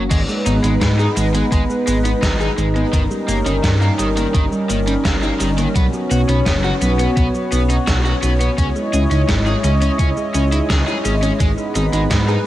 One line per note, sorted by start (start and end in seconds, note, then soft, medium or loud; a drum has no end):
0.11 0.24 G#1 loud
0.11 0.20 G#3 loud
0.11 2.91 G#3 medium
0.11 2.91 B3 medium
0.11 5.72 D#4 medium
0.11 2.91 B4 loud
0.11 kick loud
0.11 closed hi-hat loud
0.11 crash loud
0.11 cabasa soft
0.29 0.40 G#3 medium
0.29 cabasa soft
0.46 0.59 G#1 medium
0.46 0.57 B3 medium
0.46 0.55 D#4 medium
0.46 closed hi-hat medium
0.46 cabasa medium
0.64 0.77 G#1 medium
0.64 0.73 G#3 loud
0.64 0.71 D#4 medium
0.64 closed hi-hat medium
0.64 cabasa soft
0.81 1.08 G#2 medium
0.81 0.87 G#3 loud
0.81 kick loud
0.81 snare loud
0.81 closed hi-hat medium
0.81 cabasa soft
0.99 1.08 D#4 medium
0.99 1.16 G#4 medium
0.99 cabasa soft
1.16 1.43 G#1 loud
1.16 1.26 G#3 loud
1.16 1.28 G#3 medium
1.16 closed hi-hat medium
1.16 cabasa medium
1.34 1.43 G#3 loud
1.34 1.51 B3 medium
1.34 closed hi-hat medium
1.34 cabasa soft
1.52 1.65 G#1 medium
1.52 1.61 G#3 medium
1.52 kick loud
1.52 closed hi-hat loud
1.52 cabasa soft
1.70 1.81 G#3 medium
1.70 cabasa soft
1.87 2.14 G#1 loud
1.87 1.96 G#3 medium
1.87 1.99 B3 medium
1.87 closed hi-hat medium
1.87 cabasa medium
2.05 2.10 B3 loud
2.05 2.12 D#4 medium
2.05 closed hi-hat medium
2.05 cabasa soft
2.23 2.49 G#1 medium
2.23 2.32 D#4 loud
2.23 kick loud
2.23 snare loud
2.23 closed hi-hat loud
2.23 cabasa soft
2.40 2.49 D#4 medium
2.40 2.57 G#4 medium
2.40 cabasa soft
2.58 2.84 G#1 medium
2.58 2.67 G#3 medium
2.58 2.69 G#3 medium
2.58 closed hi-hat medium
2.58 cabasa medium
2.75 2.84 G#3 medium
2.75 2.92 B3 medium
2.75 closed hi-hat medium
2.75 cabasa soft
2.93 3.06 G1 loud
2.93 3.02 D#3 loud
2.93 5.73 G3 medium
2.93 8.54 C#4 medium
2.93 5.73 A#4 medium
2.93 kick loud
2.93 closed hi-hat loud
2.93 cabasa soft
3.11 3.22 G3 medium
3.11 cabasa soft
3.28 3.42 G1 medium
3.28 3.37 A#3 medium
3.28 3.40 A#3 medium
3.28 closed hi-hat medium
3.28 cabasa medium
3.46 3.59 G1 medium
3.46 3.55 D#3 loud
3.46 3.53 C#4 medium
3.46 closed hi-hat medium
3.46 cabasa soft
3.64 3.90 G2 loud
3.64 3.69 D#3 loud
3.64 kick loud
3.64 snare loud
3.64 closed hi-hat loud
3.64 cabasa soft
3.81 3.90 A#3 medium
3.81 3.98 D#4 medium
3.81 cabasa soft
3.99 4.25 G1 loud
3.99 4.08 D#3 loud
3.99 4.10 G3 medium
3.99 closed hi-hat medium
3.99 cabasa medium
4.17 4.26 D#3 medium
4.17 4.34 A#3 medium
4.17 closed hi-hat medium
4.17 cabasa soft
4.34 4.48 G1 medium
4.34 4.43 D#3 medium
4.34 kick loud
4.34 closed hi-hat loud
4.34 cabasa soft
4.52 4.63 G3 medium
4.52 cabasa soft
4.70 4.96 G1 loud
4.70 4.79 D#3 medium
4.70 4.81 A#3 medium
4.70 closed hi-hat medium
4.70 cabasa medium
4.87 4.93 G3 loud
4.87 4.94 C#4 medium
4.87 closed hi-hat medium
4.87 cabasa soft
5.05 5.31 G1 medium
5.05 5.14 A#3 loud
5.05 kick loud
5.05 snare loud
5.05 closed hi-hat loud
5.05 cabasa soft
5.23 5.32 A#3 medium
5.23 5.40 D#4 medium
5.23 cabasa soft
5.40 5.67 G1 loud
5.40 5.49 D#3 medium
5.40 5.52 G3 medium
5.40 closed hi-hat medium
5.40 cabasa medium
5.58 5.67 D#3 loud
5.58 5.75 A#3 medium
5.58 closed hi-hat medium
5.58 cabasa soft
5.76 5.89 B1 medium
5.76 5.85 B3 loud
5.76 8.55 B3 medium
5.76 8.55 F#4 medium
5.76 11.36 C#5 loud
5.76 kick loud
5.76 closed hi-hat loud
5.76 cabasa soft
5.93 6.05 F#3 medium
5.93 cabasa soft
6.11 6.24 B1 medium
6.11 6.22 B3 medium
6.11 6.20 F#4 medium
6.11 closed hi-hat medium
6.11 cabasa medium
6.29 6.42 B1 medium
6.29 6.38 B3 loud
6.29 6.35 C#4 medium
6.29 closed hi-hat medium
6.29 cabasa soft
6.46 6.72 F#1 loud
6.46 6.52 B3 loud
6.46 kick loud
6.46 snare loud
6.46 closed hi-hat medium
6.46 cabasa soft
6.64 6.73 F#4 medium
6.64 6.81 F#4 medium
6.64 cabasa soft
6.82 7.08 B1 loud
6.82 6.93 F#3 medium
6.82 6.90 B3 loud
6.82 closed hi-hat medium
6.82 cabasa medium
6.99 7.08 B3 loud
6.99 7.16 B3 medium
6.99 closed hi-hat medium
6.99 cabasa soft
7.17 7.30 B1 medium
7.17 7.26 B3 loud
7.17 kick loud
7.17 closed hi-hat medium
7.17 cabasa soft
7.35 7.46 F#3 medium
7.35 cabasa soft
7.52 7.78 B1 medium
7.52 7.61 B3 medium
7.52 7.63 B3 medium
7.52 closed hi-hat medium
7.52 cabasa medium
7.70 7.77 C#4 medium
7.70 7.75 D#4 loud
7.70 closed hi-hat medium
7.70 cabasa soft
7.87 8.14 B1 medium
7.87 7.96 F#4 loud
7.87 kick loud
7.87 snare loud
7.87 closed hi-hat loud
7.87 cabasa soft
8.05 8.14 F#4 medium
8.05 8.22 F#4 medium
8.05 cabasa soft
8.23 8.49 B1 loud
8.23 8.34 F#3 medium
8.23 8.32 B3 medium
8.23 closed hi-hat medium
8.23 cabasa medium
8.40 8.49 B3 loud
8.40 8.57 B3 medium
8.40 closed hi-hat medium
8.40 cabasa soft
8.58 8.71 C#2 loud
8.58 12.46 G#3 medium
8.58 8.67 C#4 loud
8.58 11.38 E4 medium
8.58 11.38 D#5 medium
8.58 kick loud
8.58 closed hi-hat loud
8.58 cabasa soft
8.76 8.87 G#3 medium
8.76 cabasa soft
8.93 9.07 C#2 medium
8.93 9.05 C#4 medium
8.93 9.02 G#4 medium
8.93 closed hi-hat medium
8.93 cabasa medium
9.11 9.24 C#2 medium
9.11 9.20 C#4 loud
9.11 9.18 D#4 medium
9.11 closed hi-hat medium
9.11 cabasa soft
9.29 9.55 G#1 loud
9.29 9.34 C#4 loud
9.29 kick loud
9.29 snare loud
9.29 closed hi-hat medium
9.29 cabasa soft
9.46 9.63 E4 medium
9.46 9.55 G#4 medium
9.46 cabasa soft
9.64 9.90 C#2 loud
9.64 9.75 G#3 medium
9.64 9.73 C#4 loud
9.64 closed hi-hat medium
9.64 cabasa medium
9.82 9.90 C#4 loud
9.82 9.98 C#4 medium
9.82 closed hi-hat medium
9.82 cabasa soft
9.99 10.12 C#2 medium
9.99 10.08 C#4 loud
9.99 kick loud
9.99 closed hi-hat medium
9.99 cabasa soft
10.17 10.28 G#3 medium
10.17 cabasa soft
10.34 10.61 C#2 loud
10.34 10.43 C#4 medium
10.34 10.46 C#4 medium
10.34 closed hi-hat medium
10.34 cabasa medium
10.52 10.59 D#4 medium
10.52 10.58 E4 loud
10.52 closed hi-hat medium
10.52 cabasa soft
10.70 10.83 C#2 loud
10.70 10.79 G#4 loud
10.70 kick loud
10.70 snare loud
10.70 closed hi-hat medium
10.70 cabasa soft
10.87 11.04 E4 medium
10.87 10.96 G#4 medium
10.87 cabasa soft
11.05 11.31 G#1 medium
11.05 11.16 G#3 medium
11.05 11.14 C#4 medium
11.05 closed hi-hat medium
11.05 cabasa medium
11.23 11.32 C#4 loud
11.23 11.39 C#4 medium
11.23 closed hi-hat medium
11.23 cabasa soft
11.40 11.54 G#1 loud
11.40 11.49 G#3 loud
11.40 12.46 B3 medium
11.40 12.46 D#4 medium
11.40 12.46 B4 medium
11.40 kick loud
11.40 closed hi-hat loud
11.40 cabasa soft
11.58 11.69 G#3 medium
11.58 cabasa soft
11.76 11.89 G#1 medium
11.76 11.87 G#3 loud
11.76 11.85 D#4 medium
11.76 closed hi-hat medium
11.76 cabasa medium
11.93 12.06 G#1 medium
11.93 12.02 G#3 loud
11.93 12.00 D#4 medium
11.93 closed hi-hat medium
11.93 cabasa soft
12.11 12.37 G#2 loud
12.11 12.16 G#3 loud
12.11 kick loud
12.11 snare loud
12.11 closed hi-hat medium
12.11 cabasa soft
12.28 12.37 D#4 medium
12.28 12.45 G#4 medium
12.28 cabasa soft